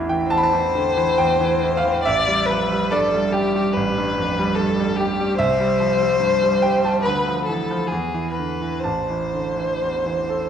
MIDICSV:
0, 0, Header, 1, 3, 480
1, 0, Start_track
1, 0, Key_signature, 0, "minor"
1, 0, Tempo, 870827
1, 1121, Time_signature, 4, 2, 24, 8
1, 1600, Tempo, 832178
1, 4480, Tempo, 946372
1, 5798, End_track
2, 0, Start_track
2, 0, Title_t, "Violin"
2, 0, Program_c, 0, 40
2, 162, Note_on_c, 0, 72, 74
2, 1099, Note_off_c, 0, 72, 0
2, 1120, Note_on_c, 0, 74, 88
2, 1354, Note_on_c, 0, 71, 73
2, 1362, Note_off_c, 0, 74, 0
2, 1600, Note_on_c, 0, 69, 66
2, 1608, Note_off_c, 0, 71, 0
2, 1843, Note_on_c, 0, 67, 70
2, 1851, Note_off_c, 0, 69, 0
2, 2077, Note_on_c, 0, 71, 69
2, 2086, Note_off_c, 0, 67, 0
2, 2552, Note_on_c, 0, 69, 64
2, 2560, Note_off_c, 0, 71, 0
2, 2787, Note_on_c, 0, 67, 68
2, 2795, Note_off_c, 0, 69, 0
2, 3018, Note_off_c, 0, 67, 0
2, 3021, Note_on_c, 0, 72, 89
2, 3958, Note_off_c, 0, 72, 0
2, 3976, Note_on_c, 0, 71, 60
2, 4218, Note_off_c, 0, 71, 0
2, 4224, Note_on_c, 0, 69, 50
2, 4465, Note_on_c, 0, 68, 46
2, 4474, Note_off_c, 0, 69, 0
2, 4691, Note_off_c, 0, 68, 0
2, 4694, Note_on_c, 0, 71, 46
2, 4935, Note_on_c, 0, 72, 51
2, 4942, Note_off_c, 0, 71, 0
2, 5798, Note_off_c, 0, 72, 0
2, 5798, End_track
3, 0, Start_track
3, 0, Title_t, "Grand piano"
3, 0, Program_c, 1, 0
3, 0, Control_c, 1, 64, 127
3, 0, Note_on_c, 1, 33, 59
3, 0, Note_on_c, 1, 40, 52
3, 0, Note_on_c, 1, 50, 44
3, 0, Note_on_c, 1, 52, 49
3, 0, Note_on_c, 1, 64, 61
3, 0, Note_on_c, 1, 76, 89
3, 52, Note_on_c, 1, 79, 75
3, 53, Note_off_c, 1, 52, 0
3, 53, Note_on_c, 1, 52, 45
3, 115, Note_off_c, 1, 64, 0
3, 144, Note_off_c, 1, 33, 0
3, 166, Note_off_c, 1, 79, 0
3, 167, Note_on_c, 1, 81, 94
3, 172, Note_off_c, 1, 40, 0
3, 172, Note_on_c, 1, 40, 45
3, 202, Note_off_c, 1, 81, 0
3, 207, Note_on_c, 1, 83, 78
3, 239, Note_off_c, 1, 52, 0
3, 239, Note_on_c, 1, 81, 90
3, 241, Note_off_c, 1, 83, 0
3, 293, Note_on_c, 1, 52, 49
3, 357, Note_off_c, 1, 40, 0
3, 414, Note_off_c, 1, 50, 0
3, 414, Note_on_c, 1, 50, 46
3, 477, Note_off_c, 1, 52, 0
3, 526, Note_off_c, 1, 50, 0
3, 536, Note_on_c, 1, 52, 54
3, 638, Note_off_c, 1, 81, 0
3, 650, Note_on_c, 1, 79, 90
3, 654, Note_on_c, 1, 40, 54
3, 717, Note_off_c, 1, 52, 0
3, 774, Note_on_c, 1, 52, 52
3, 838, Note_off_c, 1, 40, 0
3, 897, Note_on_c, 1, 64, 49
3, 959, Note_off_c, 1, 52, 0
3, 965, Note_off_c, 1, 79, 0
3, 977, Note_on_c, 1, 77, 77
3, 1019, Note_on_c, 1, 52, 47
3, 1082, Note_off_c, 1, 64, 0
3, 1130, Note_off_c, 1, 77, 0
3, 1131, Note_off_c, 1, 52, 0
3, 1131, Control_c, 1, 64, 0
3, 1132, Note_off_c, 1, 76, 0
3, 1132, Note_on_c, 1, 76, 91
3, 1138, Note_on_c, 1, 33, 57
3, 1226, Control_c, 1, 64, 127
3, 1254, Note_on_c, 1, 55, 50
3, 1379, Note_on_c, 1, 53, 44
3, 1440, Note_off_c, 1, 55, 0
3, 1490, Note_off_c, 1, 53, 0
3, 1499, Note_on_c, 1, 55, 49
3, 1606, Note_off_c, 1, 76, 0
3, 1609, Note_on_c, 1, 74, 85
3, 1612, Note_on_c, 1, 43, 53
3, 1683, Note_off_c, 1, 55, 0
3, 1737, Note_on_c, 1, 55, 54
3, 1801, Note_off_c, 1, 43, 0
3, 1852, Note_on_c, 1, 67, 62
3, 1923, Note_off_c, 1, 55, 0
3, 1976, Note_on_c, 1, 55, 51
3, 2041, Note_off_c, 1, 67, 0
3, 2071, Note_off_c, 1, 33, 0
3, 2097, Note_on_c, 1, 33, 53
3, 2163, Note_off_c, 1, 55, 0
3, 2220, Note_on_c, 1, 43, 50
3, 2335, Note_on_c, 1, 41, 46
3, 2405, Note_off_c, 1, 43, 0
3, 2450, Note_off_c, 1, 41, 0
3, 2458, Note_on_c, 1, 55, 56
3, 2577, Note_on_c, 1, 43, 51
3, 2642, Note_off_c, 1, 55, 0
3, 2693, Note_on_c, 1, 55, 51
3, 2760, Note_off_c, 1, 43, 0
3, 2812, Note_on_c, 1, 67, 53
3, 2877, Note_off_c, 1, 55, 0
3, 2924, Note_on_c, 1, 55, 46
3, 2995, Note_off_c, 1, 67, 0
3, 3020, Note_off_c, 1, 33, 0
3, 3032, Note_on_c, 1, 76, 91
3, 3035, Note_on_c, 1, 36, 59
3, 3039, Note_off_c, 1, 55, 0
3, 3041, Note_off_c, 1, 74, 0
3, 3045, Control_c, 1, 64, 0
3, 3141, Control_c, 1, 64, 127
3, 3156, Note_on_c, 1, 55, 51
3, 3272, Note_on_c, 1, 53, 38
3, 3343, Note_off_c, 1, 55, 0
3, 3388, Note_on_c, 1, 55, 44
3, 3389, Note_off_c, 1, 53, 0
3, 3501, Note_on_c, 1, 43, 46
3, 3578, Note_off_c, 1, 55, 0
3, 3630, Note_on_c, 1, 55, 46
3, 3695, Note_off_c, 1, 43, 0
3, 3744, Note_off_c, 1, 76, 0
3, 3746, Note_on_c, 1, 79, 90
3, 3750, Note_on_c, 1, 67, 50
3, 3819, Note_off_c, 1, 55, 0
3, 3866, Note_off_c, 1, 79, 0
3, 3873, Note_on_c, 1, 81, 69
3, 3875, Note_on_c, 1, 55, 39
3, 3939, Note_off_c, 1, 67, 0
3, 3961, Note_off_c, 1, 36, 0
3, 3989, Note_off_c, 1, 81, 0
3, 3990, Note_off_c, 1, 55, 0
3, 3994, Note_on_c, 1, 83, 85
3, 3995, Control_c, 1, 64, 0
3, 4000, Note_on_c, 1, 38, 53
3, 4100, Control_c, 1, 64, 127
3, 4124, Note_on_c, 1, 53, 40
3, 4247, Note_on_c, 1, 52, 36
3, 4311, Note_off_c, 1, 53, 0
3, 4361, Note_off_c, 1, 52, 0
3, 4372, Note_on_c, 1, 53, 40
3, 4471, Note_off_c, 1, 38, 0
3, 4488, Note_off_c, 1, 53, 0
3, 4488, Control_c, 1, 64, 0
3, 4493, Note_on_c, 1, 40, 50
3, 4581, Control_c, 1, 64, 127
3, 4605, Note_on_c, 1, 52, 36
3, 4727, Note_on_c, 1, 50, 27
3, 4787, Note_off_c, 1, 52, 0
3, 4838, Note_off_c, 1, 50, 0
3, 4845, Note_on_c, 1, 52, 31
3, 4944, Note_off_c, 1, 40, 0
3, 4955, Note_off_c, 1, 83, 0
3, 4957, Note_on_c, 1, 81, 54
3, 4959, Note_off_c, 1, 52, 0
3, 4960, Control_c, 1, 64, 0
3, 4962, Note_on_c, 1, 33, 39
3, 5041, Control_c, 1, 64, 127
3, 5092, Note_on_c, 1, 52, 33
3, 5211, Note_on_c, 1, 50, 26
3, 5277, Note_off_c, 1, 52, 0
3, 5324, Note_off_c, 1, 50, 0
3, 5328, Note_on_c, 1, 52, 29
3, 5458, Note_on_c, 1, 40, 29
3, 5515, Note_off_c, 1, 52, 0
3, 5577, Note_on_c, 1, 52, 29
3, 5641, Note_off_c, 1, 40, 0
3, 5695, Note_on_c, 1, 69, 37
3, 5761, Note_off_c, 1, 52, 0
3, 5798, Note_off_c, 1, 33, 0
3, 5798, Note_off_c, 1, 69, 0
3, 5798, Note_off_c, 1, 81, 0
3, 5798, End_track
0, 0, End_of_file